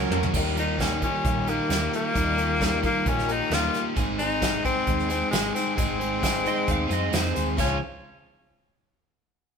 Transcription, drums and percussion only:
0.12 mid tom
0.23 floor tom
0.34 kick, crash
0.57 closed hi-hat
0.79 kick, snare, closed hi-hat
1.02 kick, closed hi-hat
1.25 kick, closed hi-hat
1.48 closed hi-hat
1.70 snare, closed hi-hat
1.93 closed hi-hat
2.15 kick, closed hi-hat
2.38 closed hi-hat
2.61 kick, snare, closed hi-hat
2.83 kick, closed hi-hat
3.06 kick, closed hi-hat
3.18 snare
3.29 closed hi-hat
3.51 snare, closed hi-hat
3.74 snare, closed hi-hat
3.97 kick, closed hi-hat, tambourine
4.19 closed hi-hat, tambourine
4.42 kick, snare, closed hi-hat, tambourine
4.65 kick, closed hi-hat, tambourine
4.87 kick, closed hi-hat
4.99 snare
5.10 closed hi-hat, tambourine
5.33 snare, closed hi-hat, tambourine
5.56 snare, closed hi-hat, tambourine
5.78 kick, closed hi-hat, tambourine
6.01 closed hi-hat
6.23 kick, snare, closed hi-hat, tambourine
6.46 closed hi-hat, tambourine
6.68 kick, closed hi-hat, tambourine
6.91 closed hi-hat, tambourine
7.13 snare, closed hi-hat, tambourine
7.25 snare
7.36 closed hi-hat, tambourine
7.58 kick, crash, tambourine

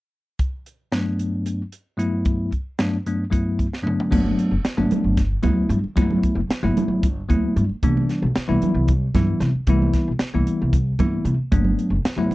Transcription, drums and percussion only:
0.39 kick, closed hi-hat
0.66 closed hi-hat
0.92 snare, closed hi-hat
1.19 closed hi-hat
1.46 closed hi-hat
1.72 closed hi-hat
1.99 closed hi-hat
2.25 kick, closed hi-hat
2.52 kick, closed hi-hat
2.79 snare, closed hi-hat
3.06 closed hi-hat
3.32 kick, closed hi-hat
3.59 kick, closed hi-hat
3.73 snare
3.87 mid tom
4.00 floor tom
4.12 kick, crash, high conga
4.26 low conga
4.39 closed hi-hat
4.65 snare, closed hi-hat
4.78 high conga
4.91 closed hi-hat, low conga
5.17 kick, snare, closed hi-hat
5.43 kick, closed hi-hat, high conga, low conga
5.70 closed hi-hat
5.84 low conga
5.97 kick, closed hi-hat, high conga
6.11 low conga
6.23 kick, closed hi-hat
6.50 snare, closed hi-hat
6.65 high conga
6.77 closed hi-hat, low conga
7.03 kick, closed hi-hat
7.30 kick, closed hi-hat, high conga
7.57 closed hi-hat
7.69 low conga
7.83 kick, closed hi-hat, high conga
7.97 low conga
8.09 snare, closed hi-hat
8.35 snare, closed hi-hat
8.50 high conga
8.62 closed hi-hat, low conga
8.88 kick, closed hi-hat
9.15 kick, snare, closed hi-hat, high conga, low conga
9.41 snare, closed hi-hat
9.55 low conga
9.67 kick, closed hi-hat, high conga
9.82 low conga
9.93 kick, snare, closed hi-hat, low conga
10.19 snare, closed hi-hat
10.34 high conga
10.47 closed hi-hat
10.61 low conga
10.73 kick, closed hi-hat
10.99 kick, closed hi-hat, high conga, low conga
11.25 closed hi-hat
11.52 kick, closed hi-hat, high conga
11.65 low conga
11.79 closed hi-hat
12.05 snare, closed hi-hat
12.18 high conga
12.31 low conga

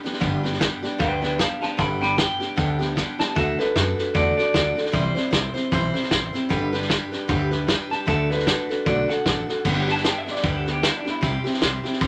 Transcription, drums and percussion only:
0.05 snare
0.13 snare
0.21 kick, snare
0.45 snare
0.53 snare
0.61 kick, snare, hi-hat pedal
0.84 snare
1.00 kick, snare
1.23 snare
1.39 kick, snare, hi-hat pedal
1.63 snare
1.79 kick, snare
2.02 snare
2.18 kick, snare, hi-hat pedal
2.41 snare
2.58 kick, snare
2.81 snare
2.97 kick, snare, hi-hat pedal
3.20 snare
3.36 kick, snare
3.59 snare
3.76 kick, snare, hi-hat pedal
3.98 snare
4.15 kick, snare
4.38 snare
4.54 kick, snare, hi-hat pedal
4.77 snare
4.85 snare
4.93 kick, snare
5.16 snare
5.33 kick, snare, hi-hat pedal
5.56 snare
5.72 kick, snare
5.95 snare
6.03 snare
6.11 kick, snare, hi-hat pedal
6.34 snare
6.50 kick, snare
6.73 snare
6.82 snare
6.90 kick, snare, hi-hat pedal
7.12 snare
7.29 kick, snare
7.52 snare
7.68 kick, snare, hi-hat pedal
7.91 snare
8.08 kick, snare
8.31 snare
8.39 snare
8.47 kick, snare, hi-hat pedal
8.70 snare
8.86 kick, snare
9.09 snare
9.26 kick, snare, hi-hat pedal
9.49 snare
9.65 kick, snare, crash
9.88 snare
9.97 snare
10.04 snare, hi-hat pedal
10.27 snare
10.35 snare
10.44 kick, snare
10.67 snare
10.83 snare, hi-hat pedal
11.06 snare
11.22 kick, snare
11.46 snare
11.54 snare
11.62 snare, hi-hat pedal
11.84 snare
11.93 snare
12.01 kick, snare

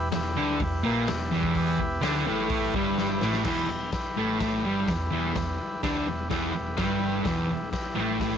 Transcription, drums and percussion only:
0.12 snare, open hi-hat
0.60 kick, open hi-hat
1.07 snare, open hi-hat
1.43 kick
1.55 kick, open hi-hat
1.79 kick
2.03 snare, open hi-hat
2.49 kick, open hi-hat
2.74 kick
2.98 snare
3.22 snare
3.33 snare
3.44 kick, snare, crash
3.92 kick, snare, open hi-hat
4.40 kick, snare, open hi-hat
4.88 kick, snare, open hi-hat
5.35 kick, snare, open hi-hat
5.83 kick, snare, open hi-hat
6.30 kick, snare, open hi-hat
6.77 kick, snare, open hi-hat
7.25 kick, snare, open hi-hat
7.73 kick, snare, open hi-hat
8.20 kick, snare, open hi-hat

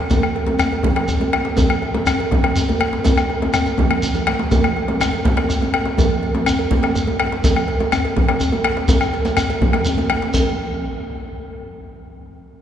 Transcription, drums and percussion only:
0.10 bombo low, cowbell, djembe slap, djembe tone, high conga, djembe bass, low conga, shekere
0.23 bombo rim, djembe slap, high conga
0.35 bombo rim, cowbell, djembe slap
0.46 cowbell, djembe slap, djembe tone, high conga
0.59 bombo rim, djembe bass, shekere
0.72 cowbell
0.83 bombo low, djembe tone, high conga, low conga
0.96 bombo rim, cowbell, djembe slap
1.08 djembe slap, djembe bass, shekere
1.20 cowbell, djembe tone, high conga
1.33 bombo rim, cowbell
1.45 djembe slap
1.57 bombo low, cowbell, djembe slap, djembe tone, high conga, djembe bass, low conga, shekere
1.69 bombo rim, djembe slap, high conga
1.82 bombo rim, cowbell, djembe slap
1.94 cowbell, djembe slap, djembe tone, high conga
2.06 bombo rim, djembe bass, shekere
2.20 cowbell
2.31 bombo low, djembe tone, high conga, low conga
2.44 bombo rim, cowbell, djembe slap
2.56 djembe slap, djembe bass, shekere
2.69 cowbell, djembe tone, high conga
2.80 bombo rim, cowbell
2.93 djembe slap
3.04 bombo rim, bombo low, cowbell, djembe tone, high conga, djembe bass, low conga, shekere
3.18 bombo rim, high conga, shekere
3.30 bombo rim, cowbell, djembe slap, high conga
3.42 cowbell, djembe slap, djembe tone, high conga
3.54 bombo rim, djembe bass, shekere
3.66 cowbell, djembe slap, shekere
3.78 bombo low, djembe slap, djembe tone, high conga, low conga
3.90 bombo rim, cowbell, high conga, djembe bass
4.02 bombo rim, high conga, djembe bass, shekere
4.14 bombo rim, cowbell, djembe bass, low conga, shekere
4.27 bombo rim, cowbell, djembe slap, high conga
4.39 djembe slap, high conga
4.51 bombo low, cowbell, djembe slap, djembe tone, high conga, djembe bass, low conga, shekere
4.64 bombo rim, high conga
4.76 bombo rim, cowbell, djembe slap
4.88 cowbell, djembe slap, djembe tone, high conga
5.00 bombo rim, djembe bass, shekere
5.13 cowbell
5.25 bombo low, djembe tone, high conga, low conga
5.37 bombo rim, cowbell, djembe slap
5.49 djembe slap, djembe bass, shekere
5.61 cowbell, djembe tone, high conga
5.74 bombo rim, cowbell
5.85 djembe slap
5.98 bombo low, cowbell, djembe slap, djembe tone, high conga, djembe bass, low conga, shekere
6.10 djembe slap, high conga
6.22 cowbell, djembe slap
6.35 cowbell, djembe slap, djembe tone, high conga
6.46 bombo rim, djembe bass, shekere
6.59 cowbell
6.71 bombo low, high conga, djembe tone, low conga
6.83 bombo rim, cowbell, djembe slap
6.95 djembe slap, djembe bass, shekere
7.07 cowbell, high conga, djembe tone
7.20 bombo rim, cowbell
7.32 djembe slap
7.44 bombo low, cowbell, djembe slap, high conga, djembe tone, low conga, djembe bass, shekere
7.56 bombo rim, djembe slap, high conga
7.68 bombo rim, cowbell, djembe slap
7.80 cowbell, djembe slap, high conga, djembe tone
7.92 bombo rim, djembe bass, shekere
8.05 cowbell
8.16 bombo low, djembe tone, high conga, low conga
8.28 bombo rim, cowbell, djembe slap
8.40 djembe slap, djembe bass, shekere
8.52 cowbell, djembe tone, high conga
8.64 bombo rim, cowbell
8.77 djembe slap
8.88 bombo low, cowbell, djembe tone, high conga, djembe bass, low conga, shekere
9.01 bombo rim, shekere
9.13 bombo rim, cowbell
9.25 cowbell, djembe slap, high conga, djembe tone, shekere
9.37 bombo rim, djembe slap, high conga, djembe bass, shekere
9.49 bombo rim, cowbell, djembe slap, high conga, shekere
9.61 bombo low, djembe tone, high conga, low conga
9.73 bombo rim, cowbell, djembe slap, high conga
9.85 bombo rim, djembe bass, shekere
9.97 bombo rim, cowbell, djembe slap, high conga, djembe tone
10.10 bombo rim, cowbell
10.22 djembe slap
10.34 bombo low, cowbell, low conga, djembe bass, shekere

